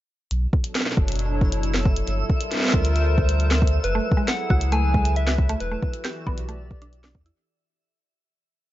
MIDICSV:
0, 0, Header, 1, 7, 480
1, 0, Start_track
1, 0, Key_signature, 2, "minor"
1, 0, Tempo, 441176
1, 337, Time_signature, 4, 2, 24, 8
1, 9490, End_track
2, 0, Start_track
2, 0, Title_t, "Soft synth lead"
2, 0, Program_c, 0, 80
2, 4179, Note_on_c, 0, 71, 99
2, 4660, Note_on_c, 0, 78, 105
2, 4676, Note_off_c, 0, 71, 0
2, 5140, Note_on_c, 0, 80, 117
2, 5156, Note_off_c, 0, 78, 0
2, 5613, Note_off_c, 0, 80, 0
2, 5620, Note_on_c, 0, 76, 107
2, 6099, Note_on_c, 0, 71, 94
2, 6116, Note_off_c, 0, 76, 0
2, 7538, Note_off_c, 0, 71, 0
2, 9490, End_track
3, 0, Start_track
3, 0, Title_t, "Synth texture"
3, 0, Program_c, 1, 99
3, 338, Note_on_c, 1, 76, 92
3, 8028, Note_off_c, 1, 76, 0
3, 9490, End_track
4, 0, Start_track
4, 0, Title_t, "Analog synth pad"
4, 0, Program_c, 2, 89
4, 337, Note_on_c, 2, 47, 93
4, 450, Note_on_c, 2, 54, 79
4, 520, Note_on_c, 2, 62, 81
4, 580, Note_on_c, 2, 69, 83
4, 912, Note_on_c, 2, 73, 73
4, 1049, Note_on_c, 2, 64, 79
4, 2258, Note_off_c, 2, 47, 0
4, 2258, Note_off_c, 2, 54, 0
4, 2258, Note_off_c, 2, 64, 0
4, 2258, Note_off_c, 2, 73, 0
4, 2258, Note_on_c, 2, 55, 76
4, 2335, Note_on_c, 2, 65, 71
4, 2409, Note_on_c, 2, 70, 96
4, 2715, Note_on_c, 2, 72, 94
4, 3026, Note_off_c, 2, 62, 0
4, 4178, Note_off_c, 2, 55, 0
4, 4178, Note_off_c, 2, 65, 0
4, 4178, Note_off_c, 2, 70, 0
4, 4178, Note_off_c, 2, 72, 0
4, 4178, Note_on_c, 2, 54, 77
4, 4224, Note_on_c, 2, 64, 78
4, 4541, Note_on_c, 2, 68, 91
4, 4743, Note_on_c, 2, 71, 87
4, 6098, Note_off_c, 2, 54, 0
4, 6098, Note_off_c, 2, 68, 0
4, 6098, Note_on_c, 2, 52, 91
4, 6253, Note_on_c, 2, 66, 82
4, 6520, Note_on_c, 2, 67, 86
4, 6618, Note_on_c, 2, 74, 90
4, 6866, Note_off_c, 2, 71, 0
4, 8017, Note_off_c, 2, 67, 0
4, 8017, Note_off_c, 2, 74, 0
4, 8018, Note_off_c, 2, 52, 0
4, 8018, Note_off_c, 2, 64, 0
4, 8018, Note_off_c, 2, 66, 0
4, 8018, Note_off_c, 2, 69, 0
4, 9490, End_track
5, 0, Start_track
5, 0, Title_t, "Synth arpeggio sound"
5, 0, Program_c, 3, 84
5, 4298, Note_on_c, 3, 57, 102
5, 4401, Note_off_c, 3, 57, 0
5, 4538, Note_on_c, 3, 56, 79
5, 4641, Note_off_c, 3, 56, 0
5, 4898, Note_on_c, 3, 66, 76
5, 5001, Note_off_c, 3, 66, 0
5, 5138, Note_on_c, 3, 57, 107
5, 5241, Note_off_c, 3, 57, 0
5, 5378, Note_on_c, 3, 56, 75
5, 5481, Note_off_c, 3, 56, 0
5, 5739, Note_on_c, 3, 66, 78
5, 5841, Note_off_c, 3, 66, 0
5, 5978, Note_on_c, 3, 57, 104
5, 6081, Note_off_c, 3, 57, 0
5, 6218, Note_on_c, 3, 57, 73
5, 6321, Note_off_c, 3, 57, 0
5, 6578, Note_on_c, 3, 67, 84
5, 6681, Note_off_c, 3, 67, 0
5, 6818, Note_on_c, 3, 59, 94
5, 6921, Note_off_c, 3, 59, 0
5, 7057, Note_on_c, 3, 57, 83
5, 7160, Note_off_c, 3, 57, 0
5, 7418, Note_on_c, 3, 62, 80
5, 7480, Note_off_c, 3, 62, 0
5, 7657, Note_on_c, 3, 62, 106
5, 7772, Note_off_c, 3, 62, 0
5, 7897, Note_on_c, 3, 64, 78
5, 8000, Note_off_c, 3, 64, 0
5, 9490, End_track
6, 0, Start_track
6, 0, Title_t, "Sub bass"
6, 0, Program_c, 4, 38
6, 337, Note_on_c, 4, 35, 101
6, 509, Note_off_c, 4, 35, 0
6, 1057, Note_on_c, 4, 30, 104
6, 2203, Note_off_c, 4, 30, 0
6, 2258, Note_on_c, 4, 31, 99
6, 2429, Note_off_c, 4, 31, 0
6, 2978, Note_on_c, 4, 38, 104
6, 4123, Note_off_c, 4, 38, 0
6, 4178, Note_on_c, 4, 30, 103
6, 4349, Note_off_c, 4, 30, 0
6, 4898, Note_on_c, 4, 37, 103
6, 6043, Note_off_c, 4, 37, 0
6, 6098, Note_on_c, 4, 28, 99
6, 6269, Note_off_c, 4, 28, 0
6, 6818, Note_on_c, 4, 35, 104
6, 7771, Note_off_c, 4, 35, 0
6, 7778, Note_on_c, 4, 40, 100
6, 7949, Note_off_c, 4, 40, 0
6, 9490, End_track
7, 0, Start_track
7, 0, Title_t, "Drums"
7, 338, Note_on_c, 9, 42, 53
7, 446, Note_off_c, 9, 42, 0
7, 577, Note_on_c, 9, 36, 114
7, 686, Note_off_c, 9, 36, 0
7, 697, Note_on_c, 9, 42, 67
7, 806, Note_off_c, 9, 42, 0
7, 818, Note_on_c, 9, 38, 116
7, 818, Note_on_c, 9, 42, 57
7, 878, Note_off_c, 9, 38, 0
7, 878, Note_on_c, 9, 38, 92
7, 927, Note_off_c, 9, 42, 0
7, 938, Note_off_c, 9, 38, 0
7, 938, Note_on_c, 9, 38, 75
7, 998, Note_off_c, 9, 38, 0
7, 998, Note_on_c, 9, 38, 64
7, 1058, Note_on_c, 9, 36, 105
7, 1107, Note_off_c, 9, 38, 0
7, 1166, Note_off_c, 9, 36, 0
7, 1178, Note_on_c, 9, 42, 63
7, 1218, Note_off_c, 9, 42, 0
7, 1218, Note_on_c, 9, 42, 53
7, 1258, Note_off_c, 9, 42, 0
7, 1258, Note_on_c, 9, 42, 44
7, 1297, Note_off_c, 9, 42, 0
7, 1297, Note_on_c, 9, 42, 55
7, 1406, Note_off_c, 9, 42, 0
7, 1538, Note_on_c, 9, 36, 115
7, 1647, Note_off_c, 9, 36, 0
7, 1657, Note_on_c, 9, 42, 68
7, 1766, Note_off_c, 9, 42, 0
7, 1778, Note_on_c, 9, 42, 54
7, 1887, Note_off_c, 9, 42, 0
7, 1897, Note_on_c, 9, 38, 119
7, 2006, Note_off_c, 9, 38, 0
7, 2018, Note_on_c, 9, 36, 126
7, 2127, Note_off_c, 9, 36, 0
7, 2138, Note_on_c, 9, 42, 69
7, 2247, Note_off_c, 9, 42, 0
7, 2258, Note_on_c, 9, 42, 55
7, 2367, Note_off_c, 9, 42, 0
7, 2498, Note_on_c, 9, 36, 105
7, 2607, Note_off_c, 9, 36, 0
7, 2618, Note_on_c, 9, 42, 66
7, 2727, Note_off_c, 9, 42, 0
7, 2738, Note_on_c, 9, 38, 54
7, 2738, Note_on_c, 9, 42, 57
7, 2767, Note_off_c, 9, 38, 0
7, 2767, Note_on_c, 9, 38, 63
7, 2798, Note_off_c, 9, 38, 0
7, 2798, Note_on_c, 9, 38, 70
7, 2827, Note_off_c, 9, 38, 0
7, 2827, Note_on_c, 9, 38, 79
7, 2846, Note_off_c, 9, 42, 0
7, 2858, Note_off_c, 9, 38, 0
7, 2858, Note_on_c, 9, 38, 86
7, 2888, Note_off_c, 9, 38, 0
7, 2888, Note_on_c, 9, 38, 95
7, 2918, Note_off_c, 9, 38, 0
7, 2918, Note_on_c, 9, 38, 105
7, 2948, Note_off_c, 9, 38, 0
7, 2948, Note_on_c, 9, 38, 114
7, 2978, Note_on_c, 9, 36, 125
7, 3057, Note_off_c, 9, 38, 0
7, 3087, Note_off_c, 9, 36, 0
7, 3099, Note_on_c, 9, 42, 70
7, 3207, Note_off_c, 9, 42, 0
7, 3218, Note_on_c, 9, 42, 55
7, 3327, Note_off_c, 9, 42, 0
7, 3458, Note_on_c, 9, 36, 122
7, 3567, Note_off_c, 9, 36, 0
7, 3578, Note_on_c, 9, 42, 68
7, 3687, Note_off_c, 9, 42, 0
7, 3699, Note_on_c, 9, 42, 54
7, 3807, Note_off_c, 9, 42, 0
7, 3818, Note_on_c, 9, 38, 124
7, 3927, Note_off_c, 9, 38, 0
7, 3938, Note_on_c, 9, 36, 109
7, 3999, Note_on_c, 9, 42, 65
7, 4047, Note_off_c, 9, 36, 0
7, 4107, Note_off_c, 9, 42, 0
7, 4178, Note_on_c, 9, 42, 54
7, 4287, Note_off_c, 9, 42, 0
7, 4478, Note_on_c, 9, 36, 122
7, 4587, Note_off_c, 9, 36, 0
7, 4658, Note_on_c, 9, 38, 123
7, 4658, Note_on_c, 9, 42, 53
7, 4767, Note_off_c, 9, 38, 0
7, 4767, Note_off_c, 9, 42, 0
7, 4898, Note_on_c, 9, 36, 127
7, 5007, Note_off_c, 9, 36, 0
7, 5018, Note_on_c, 9, 42, 69
7, 5127, Note_off_c, 9, 42, 0
7, 5138, Note_on_c, 9, 42, 55
7, 5247, Note_off_c, 9, 42, 0
7, 5378, Note_on_c, 9, 36, 107
7, 5487, Note_off_c, 9, 36, 0
7, 5498, Note_on_c, 9, 42, 66
7, 5607, Note_off_c, 9, 42, 0
7, 5618, Note_on_c, 9, 42, 51
7, 5727, Note_off_c, 9, 42, 0
7, 5738, Note_on_c, 9, 38, 127
7, 5847, Note_off_c, 9, 38, 0
7, 5858, Note_on_c, 9, 36, 127
7, 5967, Note_off_c, 9, 36, 0
7, 5978, Note_on_c, 9, 42, 69
7, 6087, Note_off_c, 9, 42, 0
7, 6098, Note_on_c, 9, 42, 53
7, 6207, Note_off_c, 9, 42, 0
7, 6338, Note_on_c, 9, 36, 122
7, 6447, Note_off_c, 9, 36, 0
7, 6458, Note_on_c, 9, 42, 62
7, 6567, Note_off_c, 9, 42, 0
7, 6579, Note_on_c, 9, 38, 124
7, 6579, Note_on_c, 9, 42, 55
7, 6688, Note_off_c, 9, 38, 0
7, 6688, Note_off_c, 9, 42, 0
7, 6818, Note_on_c, 9, 36, 110
7, 6927, Note_off_c, 9, 36, 0
7, 6938, Note_on_c, 9, 42, 66
7, 7047, Note_off_c, 9, 42, 0
7, 7058, Note_on_c, 9, 42, 50
7, 7167, Note_off_c, 9, 42, 0
7, 7298, Note_on_c, 9, 36, 122
7, 7406, Note_off_c, 9, 36, 0
7, 7418, Note_on_c, 9, 42, 65
7, 7527, Note_off_c, 9, 42, 0
7, 7538, Note_on_c, 9, 42, 50
7, 7647, Note_off_c, 9, 42, 0
7, 7658, Note_on_c, 9, 38, 127
7, 7767, Note_off_c, 9, 38, 0
7, 7778, Note_on_c, 9, 36, 127
7, 7886, Note_off_c, 9, 36, 0
7, 7898, Note_on_c, 9, 42, 65
7, 8007, Note_off_c, 9, 42, 0
7, 9490, End_track
0, 0, End_of_file